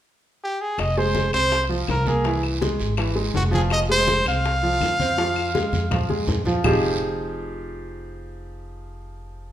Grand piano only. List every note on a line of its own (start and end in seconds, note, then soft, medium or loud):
0.97 1.27 G#3 medium
0.97 1.27 G#4 medium
1.33 1.64 C4 medium
1.33 1.64 C5 medium
1.69 2.00 F3 medium
1.69 2.00 F4 medium
2.07 2.22 A#3 medium
2.07 2.22 A#4 medium
2.26 2.55 E3 medium
2.26 2.56 E4 medium
2.62 2.92 G#3 medium
2.62 2.92 G#4 medium
2.98 3.13 E3 medium
2.98 3.14 E4 medium
3.15 3.46 G#3 medium
3.15 3.46 G#4 medium
3.51 3.82 F3 medium
3.51 3.82 F4 medium
3.89 4.20 G#3 medium
3.89 4.20 G#4 medium
4.26 4.56 C4 medium
4.26 4.56 C5 medium
4.63 4.93 F3 medium
4.63 4.93 F4 medium
5.00 5.15 C4 medium
5.00 5.15 C5 medium
5.18 5.48 F3 medium
5.18 5.48 F4 medium
5.55 5.85 G#3 medium
5.55 5.85 G#4 medium
5.91 6.06 F3 medium
5.91 6.06 F4 medium
6.09 6.40 G#3 medium
6.09 6.40 G#4 medium
6.46 6.61 F3 medium
6.46 6.61 F4 medium
6.64 9.52 F3 medium
6.64 9.52 C4 medium
6.64 9.52 D#4 medium
6.64 9.52 F4 medium
6.64 9.52 G4 medium
6.64 9.52 G#4 loud